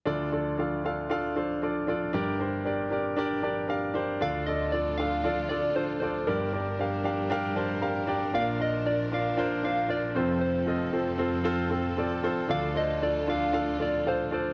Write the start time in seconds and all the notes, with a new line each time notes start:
0.06 D2 D3 D4 F4 A4 D5
0.32 D4 F4 A4 D5
0.58 D4 F4 A4 F5
0.84 D4 F4 A4 F5
1.10 D4 F4 A4 F5
1.36 D4 F4 A4 C5
1.62 D4 F4 A4 D5
1.87 D4 F4 A4 D5
2.13 G1 G2 D4 G4 A#4 D5
2.39 D4 G4 A#4 C5
2.65 D4 G4 A#4 D5
2.90 D4 G4 A#4 D5
3.17 D4 G4 A#4 D5
3.43 D4 G4 A#4 D5
3.68 D4 G4 A#4 F5
3.94 D4 G4 A#4 C5
4.20 D2 D3 D4 F4 A4 D5 F5
4.47 D4 F4 A4 D5 D#5
4.72 D4 F4 A4 D5
4.98 D4 F4 A4 F5
5.24 D4 F4 A4 D5
5.49 D4 F4 A4 D5
5.75 D4 F4 A4 C5
6.00 D4 F4 A4 C5 D5
6.27 G1 G2 G3 D4 G4 A#4 D5
6.53 D4 G4 A#4 D5
6.79 D4 G4 A#4 F5
7.04 D4 G4 A#4 F5
7.30 D4 G4 A#4 F5 G5
7.56 D4 G4 A#4 C5 A5
7.81 D4 G4 A#4 F5 A#5
8.07 D4 G4 A#4 D5 G5
8.34 A#1 A#2 F3 D4 F4 A#4 D5 F5
8.59 D4 F4 A#4 D5 D#5
8.85 D4 F4 A#4 D5
9.12 D4 F4 A#4 D5 F5
9.37 D4 F4 A#4 C5
9.63 D4 F4 A#4 C5 F5
9.88 D4 F4 A#4 D5
10.15 F1 F2 C4 F4 A4 C5
10.41 C5
10.66 C4 F4 A4 D#5
10.92 C4 F4 A4 C5
11.18 C4 F4 A4 C5
11.44 C4 F4 A4 C5
11.69 C4 F4 A4 C5
11.97 C4 F4 A4 D5
12.23 C4 F4 A4 C5
12.48 D2 D3 D4 F4 A4 D5 F5
12.74 D4 F4 A4 C5 D#5
13.02 D4 F4 A4 D5
13.27 D4 F4 A4 D5 F5
13.53 D4 F4 A4 F5
13.79 D4 F4 A4 D5
14.06 D4 F4 A4 C5 F5
14.31 D4 F4 A4 C5 D5